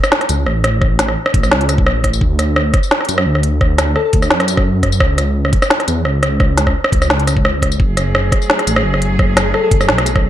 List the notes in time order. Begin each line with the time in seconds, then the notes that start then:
0.04 cross-stick, tambourine
0.12 snare
0.21 cross-stick, closed hi-hat
0.29 C#2, closed hi-hat, tambourine
0.46 A1, cross-stick
0.64 cross-stick, closed hi-hat
0.81 kick, cross-stick
0.99 snare, closed hi-hat, tambourine
1.08 cross-stick
1.26 cross-stick
1.34 A1, kick, closed hi-hat
1.43 cross-stick, tambourine
1.51 C#2, snare
1.61 closed hi-hat
1.69 cross-stick, closed hi-hat, tambourine
1.78 kick
1.87 A1, cross-stick
2.04 A1, kick, cross-stick, closed hi-hat
2.13 tambourine
2.21 D2, kick
2.39 cross-stick, closed hi-hat, tambourine
2.56 cross-stick
2.74 kick, cross-stick, closed hi-hat
2.83 tambourine
2.91 snare
3.01 cross-stick
3.05 closed hi-hat
3.09 F#2, closed hi-hat, tambourine
3.18 cross-stick
3.26 D2
3.35 cross-stick
3.43 closed hi-hat
3.61 kick, cross-stick
3.78 cross-stick, snare, closed hi-hat, tambourine
3.96 A4, cross-stick
4.05 A4
4.13 D2, kick, closed hi-hat
4.22 cross-stick, tambourine
4.30 F#2, snare
4.40 cross-stick, closed hi-hat
4.48 closed hi-hat, tambourine
4.57 kick, cross-stick
4.83 kick, cross-stick, closed hi-hat
4.92 tambourine
5.00 C#2, kick, cross-stick
5.18 cross-stick, closed hi-hat, tambourine
5.45 cross-stick
5.53 kick, closed hi-hat
5.62 cross-stick, tambourine
5.70 snare
5.80 cross-stick, closed hi-hat
5.88 E2, closed hi-hat, tambourine
6.05 C#2, cross-stick
6.23 cross-stick, closed hi-hat
6.40 kick, cross-stick
6.58 snare, closed hi-hat, tambourine
6.67 kick, cross-stick
6.84 cross-stick
6.92 C#2, kick, closed hi-hat
7.02 cross-stick, tambourine
7.10 snare
7.19 closed hi-hat
7.27 C#2, cross-stick, closed hi-hat, tambourine
7.37 kick
7.45 cross-stick
7.62 kick, cross-stick, closed hi-hat
7.72 tambourine
7.80 F#1 F#3 A3 G#4, kick
7.97 cross-stick, closed hi-hat, tambourine
8.15 cross-stick
8.32 kick, cross-stick, closed hi-hat
8.42 tambourine
8.50 snare
8.59 cross-stick, closed hi-hat
8.67 A1, closed hi-hat, tambourine
8.76 cross-stick
8.84 F#1
8.94 cross-stick
9.02 closed hi-hat
9.19 kick, cross-stick
9.37 cross-stick, snare, closed hi-hat, tambourine
9.54 A4, cross-stick
9.64 A4
9.71 F#1, kick, closed hi-hat
9.81 cross-stick, tambourine
9.89 B1, snare
9.98 cross-stick, closed hi-hat
10.06 closed hi-hat, tambourine
10.16 kick, cross-stick